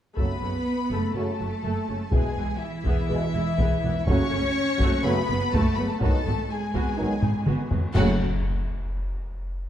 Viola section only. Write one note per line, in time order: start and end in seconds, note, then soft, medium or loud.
0.16 0.40 A3 soft
0.16 0.40 A4 soft
0.42 0.50 C#3 soft
0.42 0.50 C#4 soft
0.91 1.14 A3 soft
0.91 1.14 A4 soft
1.15 1.23 C#3 soft
1.15 1.23 C#4 soft
1.40 1.48 F#3 soft
1.40 1.48 F#4 soft
1.63 1.86 A3 soft
1.63 1.86 A4 soft
1.88 1.97 C#3 soft
1.88 1.96 C#4 soft
2.13 2.36 B3 soft
2.13 2.36 G#4 medium
2.37 2.45 E3 soft
2.37 2.46 B3 soft
2.86 3.08 B3 medium
2.86 3.08 G#4 medium
3.09 3.17 E3 soft
3.09 3.17 B3 soft
3.34 3.43 G#3 soft
3.34 3.42 E4 medium
3.59 3.82 B3 medium
3.59 3.82 G#4 medium
3.84 3.92 E3 medium
3.84 3.93 B3 medium
4.09 4.31 A3 medium
4.09 4.31 F#4 medium
4.34 4.42 C#3 medium
4.34 4.43 A3 medium
4.82 5.04 A3 medium
4.82 5.04 F#4 medium
5.06 5.14 C#3 medium
5.06 5.14 A3 medium
5.31 5.39 F#3 medium
5.31 5.39 C#4 medium
5.55 5.77 A3 medium
5.55 5.76 F#4 medium
5.79 5.87 C#3 medium
5.79 5.87 A3 medium
6.02 6.24 B3 medium
6.02 6.24 F#4 medium
6.26 6.34 F#3 soft
6.26 6.34 B3 soft
6.75 6.97 B3 medium
6.75 6.97 F#4 medium
6.98 7.06 F#3 soft
6.98 7.07 B3 soft
7.22 7.31 G#3 soft
7.22 7.30 D#4 soft
7.47 7.69 B3 medium
7.47 7.70 F#4 medium
7.71 7.79 F#3 medium
7.71 7.79 B3 medium
7.94 8.22 A3 medium
7.94 8.22 F#4 medium